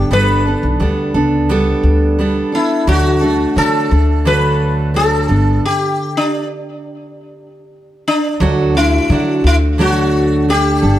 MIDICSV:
0, 0, Header, 1, 4, 480
1, 0, Start_track
1, 0, Key_signature, 2, "major"
1, 0, Tempo, 691244
1, 78, Time_signature, 4, 2, 24, 8
1, 7632, End_track
2, 0, Start_track
2, 0, Title_t, "Sitar"
2, 0, Program_c, 0, 104
2, 0, Note_on_c, 0, 67, 95
2, 92, Note_on_c, 0, 71, 102
2, 101, Note_off_c, 0, 67, 0
2, 1497, Note_off_c, 0, 71, 0
2, 1769, Note_on_c, 0, 64, 84
2, 2002, Note_off_c, 0, 64, 0
2, 2005, Note_on_c, 0, 66, 104
2, 2482, Note_off_c, 0, 66, 0
2, 2485, Note_on_c, 0, 69, 106
2, 2966, Note_on_c, 0, 71, 102
2, 2976, Note_off_c, 0, 69, 0
2, 3414, Note_off_c, 0, 71, 0
2, 3446, Note_on_c, 0, 69, 102
2, 3924, Note_off_c, 0, 69, 0
2, 3926, Note_on_c, 0, 67, 93
2, 4285, Note_on_c, 0, 62, 82
2, 4293, Note_off_c, 0, 67, 0
2, 5574, Note_off_c, 0, 62, 0
2, 5608, Note_on_c, 0, 62, 82
2, 6055, Note_off_c, 0, 62, 0
2, 6088, Note_on_c, 0, 64, 85
2, 6565, Note_off_c, 0, 64, 0
2, 6574, Note_on_c, 0, 64, 89
2, 6636, Note_off_c, 0, 64, 0
2, 6813, Note_on_c, 0, 66, 93
2, 7258, Note_off_c, 0, 66, 0
2, 7291, Note_on_c, 0, 67, 101
2, 7632, Note_off_c, 0, 67, 0
2, 7632, End_track
3, 0, Start_track
3, 0, Title_t, "Steel-string acoustic guitar"
3, 0, Program_c, 1, 25
3, 0, Note_on_c, 1, 50, 80
3, 0, Note_on_c, 1, 59, 47
3, 0, Note_on_c, 1, 62, 48
3, 0, Note_on_c, 1, 69, 51
3, 70, Note_off_c, 1, 59, 0
3, 75, Note_on_c, 1, 55, 75
3, 76, Note_off_c, 1, 62, 0
3, 76, Note_off_c, 1, 69, 0
3, 79, Note_on_c, 1, 59, 72
3, 84, Note_on_c, 1, 62, 84
3, 88, Note_on_c, 1, 69, 93
3, 306, Note_off_c, 1, 69, 0
3, 314, Note_on_c, 1, 69, 57
3, 316, Note_off_c, 1, 55, 0
3, 317, Note_off_c, 1, 62, 0
3, 318, Note_off_c, 1, 59, 0
3, 325, Note_on_c, 1, 62, 55
3, 333, Note_on_c, 1, 59, 47
3, 552, Note_off_c, 1, 59, 0
3, 552, Note_on_c, 1, 55, 67
3, 556, Note_off_c, 1, 69, 0
3, 559, Note_off_c, 1, 62, 0
3, 560, Note_on_c, 1, 59, 65
3, 567, Note_on_c, 1, 62, 72
3, 572, Note_on_c, 1, 69, 66
3, 785, Note_off_c, 1, 69, 0
3, 793, Note_on_c, 1, 69, 64
3, 795, Note_off_c, 1, 55, 0
3, 795, Note_off_c, 1, 62, 0
3, 799, Note_off_c, 1, 59, 0
3, 803, Note_on_c, 1, 62, 55
3, 811, Note_on_c, 1, 59, 47
3, 1031, Note_off_c, 1, 59, 0
3, 1036, Note_off_c, 1, 69, 0
3, 1037, Note_on_c, 1, 55, 85
3, 1038, Note_off_c, 1, 62, 0
3, 1040, Note_on_c, 1, 59, 98
3, 1046, Note_on_c, 1, 62, 93
3, 1052, Note_on_c, 1, 69, 101
3, 1510, Note_off_c, 1, 55, 0
3, 1515, Note_off_c, 1, 59, 0
3, 1518, Note_on_c, 1, 55, 72
3, 1524, Note_on_c, 1, 59, 75
3, 1528, Note_off_c, 1, 62, 0
3, 1531, Note_on_c, 1, 62, 72
3, 1535, Note_off_c, 1, 69, 0
3, 1537, Note_on_c, 1, 69, 78
3, 1552, Note_off_c, 1, 50, 0
3, 1742, Note_off_c, 1, 69, 0
3, 1751, Note_on_c, 1, 69, 50
3, 1753, Note_off_c, 1, 62, 0
3, 1758, Note_off_c, 1, 55, 0
3, 1761, Note_off_c, 1, 59, 0
3, 1761, Note_on_c, 1, 62, 45
3, 1773, Note_on_c, 1, 59, 43
3, 1993, Note_on_c, 1, 50, 72
3, 1994, Note_off_c, 1, 69, 0
3, 1996, Note_off_c, 1, 62, 0
3, 1996, Note_on_c, 1, 54, 87
3, 1997, Note_off_c, 1, 59, 0
3, 2000, Note_on_c, 1, 57, 84
3, 2004, Note_on_c, 1, 62, 85
3, 2006, Note_on_c, 1, 69, 83
3, 2218, Note_off_c, 1, 69, 0
3, 2227, Note_on_c, 1, 69, 59
3, 2229, Note_off_c, 1, 62, 0
3, 2235, Note_off_c, 1, 50, 0
3, 2237, Note_off_c, 1, 54, 0
3, 2237, Note_on_c, 1, 62, 56
3, 2239, Note_off_c, 1, 57, 0
3, 2248, Note_on_c, 1, 57, 52
3, 2470, Note_on_c, 1, 54, 66
3, 2472, Note_off_c, 1, 57, 0
3, 2472, Note_off_c, 1, 69, 0
3, 2478, Note_off_c, 1, 62, 0
3, 2481, Note_on_c, 1, 57, 65
3, 2485, Note_on_c, 1, 62, 72
3, 2490, Note_on_c, 1, 69, 75
3, 2705, Note_off_c, 1, 69, 0
3, 2713, Note_on_c, 1, 69, 45
3, 2714, Note_off_c, 1, 54, 0
3, 2716, Note_off_c, 1, 62, 0
3, 2719, Note_off_c, 1, 57, 0
3, 2724, Note_on_c, 1, 62, 47
3, 2735, Note_on_c, 1, 57, 44
3, 2953, Note_off_c, 1, 57, 0
3, 2953, Note_on_c, 1, 50, 84
3, 2954, Note_off_c, 1, 62, 0
3, 2955, Note_on_c, 1, 54, 72
3, 2956, Note_off_c, 1, 69, 0
3, 2962, Note_on_c, 1, 57, 85
3, 2963, Note_on_c, 1, 62, 78
3, 2965, Note_on_c, 1, 69, 99
3, 3423, Note_off_c, 1, 54, 0
3, 3431, Note_on_c, 1, 54, 60
3, 3434, Note_off_c, 1, 57, 0
3, 3437, Note_on_c, 1, 57, 62
3, 3442, Note_off_c, 1, 62, 0
3, 3445, Note_on_c, 1, 62, 71
3, 3449, Note_off_c, 1, 69, 0
3, 3451, Note_on_c, 1, 69, 64
3, 3658, Note_off_c, 1, 69, 0
3, 3667, Note_off_c, 1, 62, 0
3, 3667, Note_on_c, 1, 69, 49
3, 3675, Note_off_c, 1, 54, 0
3, 3675, Note_on_c, 1, 62, 45
3, 3678, Note_off_c, 1, 57, 0
3, 3684, Note_on_c, 1, 59, 47
3, 3912, Note_off_c, 1, 69, 0
3, 3917, Note_off_c, 1, 62, 0
3, 3921, Note_off_c, 1, 59, 0
3, 4268, Note_off_c, 1, 50, 0
3, 5833, Note_on_c, 1, 50, 78
3, 5841, Note_on_c, 1, 54, 84
3, 5843, Note_on_c, 1, 57, 84
3, 5846, Note_on_c, 1, 62, 79
3, 5851, Note_on_c, 1, 66, 89
3, 6066, Note_off_c, 1, 66, 0
3, 6074, Note_on_c, 1, 66, 60
3, 6075, Note_off_c, 1, 50, 0
3, 6079, Note_off_c, 1, 54, 0
3, 6079, Note_off_c, 1, 62, 0
3, 6080, Note_off_c, 1, 57, 0
3, 6087, Note_on_c, 1, 62, 55
3, 6096, Note_on_c, 1, 57, 48
3, 6316, Note_off_c, 1, 66, 0
3, 6317, Note_off_c, 1, 57, 0
3, 6318, Note_on_c, 1, 54, 66
3, 6323, Note_off_c, 1, 62, 0
3, 6325, Note_on_c, 1, 57, 65
3, 6331, Note_on_c, 1, 62, 78
3, 6338, Note_on_c, 1, 66, 70
3, 6546, Note_off_c, 1, 66, 0
3, 6555, Note_on_c, 1, 66, 49
3, 6558, Note_off_c, 1, 54, 0
3, 6558, Note_off_c, 1, 62, 0
3, 6562, Note_off_c, 1, 57, 0
3, 6566, Note_on_c, 1, 62, 47
3, 6575, Note_on_c, 1, 57, 39
3, 6791, Note_off_c, 1, 57, 0
3, 6792, Note_on_c, 1, 50, 75
3, 6796, Note_off_c, 1, 66, 0
3, 6798, Note_off_c, 1, 62, 0
3, 6798, Note_on_c, 1, 54, 90
3, 6800, Note_on_c, 1, 57, 83
3, 6806, Note_on_c, 1, 62, 90
3, 6808, Note_on_c, 1, 66, 92
3, 7277, Note_off_c, 1, 57, 0
3, 7278, Note_off_c, 1, 54, 0
3, 7280, Note_on_c, 1, 57, 61
3, 7283, Note_off_c, 1, 66, 0
3, 7284, Note_off_c, 1, 62, 0
3, 7287, Note_on_c, 1, 62, 66
3, 7512, Note_on_c, 1, 69, 51
3, 7515, Note_off_c, 1, 62, 0
3, 7519, Note_off_c, 1, 57, 0
3, 7523, Note_on_c, 1, 62, 44
3, 7532, Note_on_c, 1, 59, 43
3, 7632, Note_off_c, 1, 50, 0
3, 7632, Note_off_c, 1, 59, 0
3, 7632, Note_off_c, 1, 62, 0
3, 7632, Note_off_c, 1, 69, 0
3, 7632, End_track
4, 0, Start_track
4, 0, Title_t, "Upright bass"
4, 0, Program_c, 2, 32
4, 74, Note_on_c, 2, 31, 94
4, 371, Note_off_c, 2, 31, 0
4, 437, Note_on_c, 2, 35, 82
4, 536, Note_off_c, 2, 35, 0
4, 556, Note_on_c, 2, 38, 95
4, 753, Note_off_c, 2, 38, 0
4, 794, Note_on_c, 2, 37, 88
4, 1189, Note_off_c, 2, 37, 0
4, 1273, Note_on_c, 2, 38, 85
4, 1669, Note_off_c, 2, 38, 0
4, 1995, Note_on_c, 2, 38, 109
4, 2390, Note_off_c, 2, 38, 0
4, 2475, Note_on_c, 2, 50, 100
4, 2673, Note_off_c, 2, 50, 0
4, 2718, Note_on_c, 2, 38, 96
4, 3650, Note_off_c, 2, 38, 0
4, 3674, Note_on_c, 2, 31, 94
4, 3872, Note_off_c, 2, 31, 0
4, 5835, Note_on_c, 2, 38, 107
4, 6230, Note_off_c, 2, 38, 0
4, 6316, Note_on_c, 2, 50, 102
4, 6514, Note_off_c, 2, 50, 0
4, 6554, Note_on_c, 2, 38, 94
4, 7488, Note_off_c, 2, 38, 0
4, 7518, Note_on_c, 2, 31, 86
4, 7632, Note_off_c, 2, 31, 0
4, 7632, End_track
0, 0, End_of_file